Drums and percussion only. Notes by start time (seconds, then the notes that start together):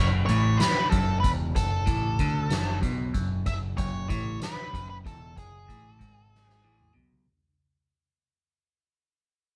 0.28 closed hi-hat
0.60 snare, closed hi-hat
0.92 kick, closed hi-hat
1.24 kick, closed hi-hat
1.56 kick, closed hi-hat
1.87 kick, closed hi-hat
2.19 kick, closed hi-hat
2.50 snare, closed hi-hat
2.83 kick, closed hi-hat
3.14 kick, closed hi-hat
3.46 kick, closed hi-hat
3.78 kick, closed hi-hat
4.10 kick, closed hi-hat
4.41 snare, closed hi-hat
4.74 kick, closed hi-hat
5.06 kick, closed hi-hat
5.37 kick, closed hi-hat
5.69 kick, closed hi-hat
6.01 kick, closed hi-hat
6.35 snare
6.49 snare
6.81 mid tom
6.96 floor tom
7.12 floor tom